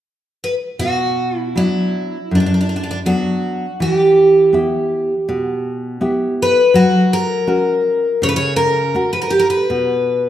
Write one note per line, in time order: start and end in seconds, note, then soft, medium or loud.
0.44 0.54 B4 medium
0.79 1.54 B2 soft
0.79 1.37 F#4 medium
1.37 1.57 E4 medium
1.56 2.16 F#3 soft
1.56 2.17 B3 soft
1.56 2.17 D4 soft
1.56 2.35 E4 medium
2.31 3.04 F#2 soft
2.31 2.39 D4 medium
2.40 2.45 D4 soft
2.46 2.53 D4 soft
2.54 2.59 D4 soft
2.61 2.68 D4 soft
2.69 2.75 D4 soft
2.76 2.82 D4 soft
2.83 2.90 D4 soft
2.91 2.98 D4 soft
3.06 3.65 F#3 soft
3.06 3.66 B3 soft
3.06 3.66 D4 soft
3.06 3.82 F#4 medium
3.80 4.52 E3 soft
3.80 5.99 G4 medium
4.53 5.13 B3 soft
4.53 5.13 E4 soft
4.53 5.14 G4 soft
5.29 6.00 B2 soft
6.01 6.59 B3 soft
6.01 6.60 E4 soft
6.01 6.60 G4 soft
6.42 6.74 B4 medium
6.74 7.46 F#3 medium
6.74 7.13 F#4 medium
7.13 8.23 A#4 medium
7.47 8.07 C#4 soft
7.47 8.07 F#4 soft
7.47 8.07 A#4 soft
8.22 8.93 C#3 medium
8.22 8.28 C#5 medium
8.29 8.35 B4 medium
8.36 8.56 C#5 medium
8.56 9.11 A#4 medium
8.94 9.55 C#4 soft
8.94 9.55 F#4 soft
8.94 9.56 A#4 soft
9.13 9.21 B4 medium
9.22 9.32 A#4 medium
9.30 9.41 G4 medium
9.39 9.50 A#4 medium
9.50 10.29 B4 medium
9.70 10.29 B2 soft